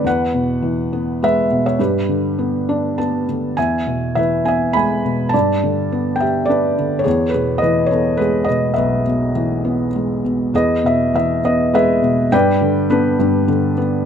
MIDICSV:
0, 0, Header, 1, 2, 480
1, 0, Start_track
1, 0, Tempo, 587084
1, 38, Time_signature, 3, 2, 24, 8
1, 4839, Tempo, 569801
1, 7719, Tempo, 594648
1, 10119, Tempo, 579151
1, 11564, End_track
2, 0, Start_track
2, 0, Title_t, "Felt piano"
2, 0, Program_c, 0, 0
2, 0, Control_c, 0, 64, 127
2, 33, Note_on_c, 0, 40, 48
2, 50, Control_c, 0, 64, 0
2, 55, Note_on_c, 0, 78, 72
2, 63, Note_on_c, 0, 71, 62
2, 188, Control_c, 0, 64, 127
2, 279, Note_on_c, 0, 47, 36
2, 510, Note_on_c, 0, 52, 39
2, 758, Note_on_c, 0, 59, 44
2, 968, Note_off_c, 0, 71, 0
2, 1002, Note_on_c, 0, 56, 44
2, 1010, Note_on_c, 0, 71, 54
2, 1013, Note_on_c, 0, 76, 77
2, 1025, Note_off_c, 0, 78, 0
2, 1202, Note_off_c, 0, 47, 0
2, 1237, Note_on_c, 0, 47, 40
2, 1334, Note_off_c, 0, 71, 0
2, 1347, Note_off_c, 0, 76, 0
2, 1357, Note_on_c, 0, 73, 51
2, 1359, Note_on_c, 0, 76, 64
2, 1432, Note_off_c, 0, 40, 0
2, 1438, Note_off_c, 0, 52, 0
2, 1450, Note_off_c, 0, 59, 0
2, 1460, Note_off_c, 0, 56, 0
2, 1464, Note_off_c, 0, 73, 0
2, 1464, Note_on_c, 0, 43, 48
2, 1465, Note_off_c, 0, 47, 0
2, 1476, Note_on_c, 0, 67, 46
2, 1477, Note_off_c, 0, 76, 0
2, 1477, Control_c, 0, 64, 0
2, 1480, Note_on_c, 0, 71, 58
2, 1606, Control_c, 0, 64, 127
2, 1708, Note_on_c, 0, 50, 36
2, 1950, Note_on_c, 0, 59, 36
2, 2197, Note_on_c, 0, 74, 46
2, 2199, Note_on_c, 0, 62, 38
2, 2421, Note_off_c, 0, 74, 0
2, 2427, Note_off_c, 0, 59, 0
2, 2436, Note_on_c, 0, 81, 46
2, 2440, Note_on_c, 0, 59, 38
2, 2650, Note_off_c, 0, 50, 0
2, 2650, Note_off_c, 0, 67, 0
2, 2652, Note_off_c, 0, 71, 0
2, 2689, Note_on_c, 0, 50, 30
2, 2887, Note_off_c, 0, 43, 0
2, 2890, Note_off_c, 0, 81, 0
2, 2905, Note_off_c, 0, 62, 0
2, 2910, Note_off_c, 0, 59, 0
2, 2918, Note_on_c, 0, 80, 66
2, 2919, Note_off_c, 0, 50, 0
2, 2928, Note_on_c, 0, 40, 43
2, 2932, Note_on_c, 0, 76, 48
2, 2933, Control_c, 0, 64, 0
2, 3076, Control_c, 0, 64, 127
2, 3162, Note_on_c, 0, 47, 32
2, 3376, Note_off_c, 0, 76, 0
2, 3396, Note_on_c, 0, 76, 61
2, 3404, Note_on_c, 0, 52, 37
2, 3416, Note_off_c, 0, 80, 0
2, 3423, Note_on_c, 0, 71, 48
2, 3638, Note_off_c, 0, 71, 0
2, 3640, Note_on_c, 0, 59, 38
2, 3642, Note_on_c, 0, 80, 62
2, 3648, Note_off_c, 0, 76, 0
2, 3666, Note_on_c, 0, 76, 47
2, 3870, Note_on_c, 0, 83, 70
2, 3880, Note_off_c, 0, 76, 0
2, 3886, Note_off_c, 0, 80, 0
2, 3886, Note_on_c, 0, 56, 40
2, 3898, Note_on_c, 0, 80, 56
2, 4096, Note_off_c, 0, 47, 0
2, 4127, Note_on_c, 0, 47, 38
2, 4328, Note_on_c, 0, 81, 71
2, 4336, Note_off_c, 0, 40, 0
2, 4337, Note_off_c, 0, 52, 0
2, 4339, Note_off_c, 0, 80, 0
2, 4342, Note_off_c, 0, 59, 0
2, 4352, Note_off_c, 0, 56, 0
2, 4359, Note_off_c, 0, 47, 0
2, 4361, Note_on_c, 0, 74, 56
2, 4365, Note_on_c, 0, 43, 46
2, 4373, Note_off_c, 0, 83, 0
2, 4377, Control_c, 0, 64, 0
2, 4499, Control_c, 0, 64, 127
2, 4607, Note_on_c, 0, 50, 36
2, 4842, Note_on_c, 0, 59, 41
2, 5040, Note_on_c, 0, 79, 59
2, 5046, Note_off_c, 0, 74, 0
2, 5079, Note_on_c, 0, 76, 48
2, 5085, Note_off_c, 0, 81, 0
2, 5093, Note_on_c, 0, 67, 41
2, 5290, Note_on_c, 0, 74, 68
2, 5303, Note_off_c, 0, 76, 0
2, 5308, Note_off_c, 0, 79, 0
2, 5322, Note_on_c, 0, 62, 44
2, 5330, Note_on_c, 0, 71, 51
2, 5533, Note_off_c, 0, 50, 0
2, 5572, Note_on_c, 0, 50, 37
2, 5742, Note_on_c, 0, 73, 69
2, 5765, Note_off_c, 0, 43, 0
2, 5771, Note_off_c, 0, 59, 0
2, 5771, Note_off_c, 0, 71, 0
2, 5784, Note_off_c, 0, 67, 0
2, 5784, Note_on_c, 0, 68, 52
2, 5785, Note_off_c, 0, 62, 0
2, 5798, Note_off_c, 0, 50, 0
2, 5799, Note_off_c, 0, 74, 0
2, 5802, Note_on_c, 0, 40, 54
2, 5812, Control_c, 0, 64, 0
2, 5955, Control_c, 0, 64, 127
2, 5990, Note_off_c, 0, 73, 0
2, 5997, Note_on_c, 0, 71, 58
2, 6013, Note_off_c, 0, 68, 0
2, 6036, Note_on_c, 0, 68, 48
2, 6044, Note_on_c, 0, 47, 38
2, 6237, Note_off_c, 0, 71, 0
2, 6240, Note_on_c, 0, 75, 69
2, 6258, Note_off_c, 0, 68, 0
2, 6270, Note_on_c, 0, 71, 54
2, 6280, Note_on_c, 0, 52, 44
2, 6478, Note_on_c, 0, 73, 64
2, 6494, Note_off_c, 0, 71, 0
2, 6504, Note_off_c, 0, 75, 0
2, 6514, Note_on_c, 0, 69, 47
2, 6520, Note_on_c, 0, 59, 41
2, 6737, Note_off_c, 0, 69, 0
2, 6738, Note_on_c, 0, 71, 67
2, 6743, Note_off_c, 0, 73, 0
2, 6756, Note_on_c, 0, 56, 46
2, 6770, Note_on_c, 0, 68, 52
2, 6967, Note_on_c, 0, 75, 64
2, 6969, Note_off_c, 0, 47, 0
2, 6986, Note_off_c, 0, 68, 0
2, 6988, Note_off_c, 0, 71, 0
2, 7000, Note_on_c, 0, 71, 49
2, 7004, Note_on_c, 0, 47, 40
2, 7205, Note_off_c, 0, 40, 0
2, 7205, Note_off_c, 0, 75, 0
2, 7211, Note_off_c, 0, 52, 0
2, 7213, Note_on_c, 0, 76, 60
2, 7223, Note_off_c, 0, 71, 0
2, 7241, Note_on_c, 0, 71, 46
2, 7244, Note_on_c, 0, 35, 48
2, 7454, Note_off_c, 0, 59, 0
2, 7484, Note_off_c, 0, 47, 0
2, 7497, Note_on_c, 0, 47, 36
2, 7693, Note_off_c, 0, 56, 0
2, 7734, Note_on_c, 0, 52, 39
2, 7968, Note_on_c, 0, 59, 39
2, 8153, Note_off_c, 0, 76, 0
2, 8166, Note_off_c, 0, 71, 0
2, 8218, Note_on_c, 0, 56, 37
2, 8420, Note_off_c, 0, 47, 0
2, 8453, Note_on_c, 0, 47, 33
2, 8653, Note_off_c, 0, 35, 0
2, 8659, Note_off_c, 0, 52, 0
2, 8666, Note_off_c, 0, 59, 0
2, 8678, Note_off_c, 0, 56, 0
2, 8681, Note_off_c, 0, 47, 0
2, 8688, Note_on_c, 0, 40, 52
2, 8692, Control_c, 0, 64, 0
2, 8697, Note_on_c, 0, 68, 50
2, 8702, Note_on_c, 0, 71, 47
2, 8702, Note_on_c, 0, 75, 67
2, 8846, Control_c, 0, 64, 127
2, 8917, Note_off_c, 0, 75, 0
2, 8928, Note_on_c, 0, 47, 40
2, 8950, Note_on_c, 0, 76, 66
2, 9174, Note_off_c, 0, 76, 0
2, 9174, Note_on_c, 0, 52, 43
2, 9186, Note_on_c, 0, 76, 69
2, 9383, Note_off_c, 0, 68, 0
2, 9385, Note_off_c, 0, 71, 0
2, 9402, Note_off_c, 0, 76, 0
2, 9422, Note_on_c, 0, 59, 44
2, 9423, Note_on_c, 0, 75, 65
2, 9653, Note_on_c, 0, 56, 46
2, 9660, Note_off_c, 0, 75, 0
2, 9660, Note_on_c, 0, 71, 56
2, 9666, Note_on_c, 0, 68, 57
2, 9666, Note_on_c, 0, 76, 80
2, 9856, Note_off_c, 0, 47, 0
2, 9886, Note_on_c, 0, 47, 43
2, 10092, Note_off_c, 0, 40, 0
2, 10096, Note_off_c, 0, 71, 0
2, 10097, Note_off_c, 0, 52, 0
2, 10100, Note_off_c, 0, 68, 0
2, 10108, Note_off_c, 0, 59, 0
2, 10111, Note_off_c, 0, 56, 0
2, 10117, Note_off_c, 0, 47, 0
2, 10128, Note_on_c, 0, 79, 85
2, 10129, Note_on_c, 0, 43, 58
2, 10131, Control_c, 0, 64, 0
2, 10137, Note_on_c, 0, 71, 64
2, 10138, Note_on_c, 0, 74, 64
2, 10146, Note_off_c, 0, 76, 0
2, 10268, Control_c, 0, 64, 127
2, 10370, Note_on_c, 0, 50, 44
2, 10577, Note_off_c, 0, 79, 0
2, 10599, Note_off_c, 0, 71, 0
2, 10606, Note_on_c, 0, 59, 51
2, 10611, Note_on_c, 0, 71, 69
2, 10624, Note_on_c, 0, 62, 47
2, 10820, Note_off_c, 0, 74, 0
2, 10837, Note_off_c, 0, 43, 0
2, 10849, Note_on_c, 0, 43, 49
2, 11054, Note_off_c, 0, 71, 0
2, 11076, Note_off_c, 0, 50, 0
2, 11089, Note_on_c, 0, 50, 53
2, 11299, Note_off_c, 0, 62, 0
2, 11321, Note_off_c, 0, 59, 0
2, 11333, Note_on_c, 0, 59, 50
2, 11542, Note_off_c, 0, 43, 0
2, 11549, Note_off_c, 0, 50, 0
2, 11559, Note_off_c, 0, 59, 0
2, 11564, End_track
0, 0, End_of_file